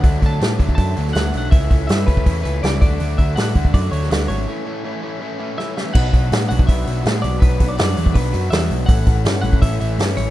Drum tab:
CC |----------------|----------------|----------------|----------------|
HH |o-o-o-o-o-o-o-o-|o-o-o-o-o-o-o-o-|o-o-o-o-o-o-o-o-|----------------|
SD |----o------oo---|----o-------o---|----o------oo---|------------o-o-|
BD |o-o---ooo-------|o-o---ooo-----o-|--o---ooo-------|----------------|

CC |x---------------|----------------|----------------|
HH |--o-o-o-o-o-o-o-|o-o-o-o-o-o-o-o-|o-o-o-o-o-o-o-o-|
SD |----o-------o---|----o-------o---|----o-------o---|
BD |o-o----oo-------|o-o----oo-------|o-o----oo-------|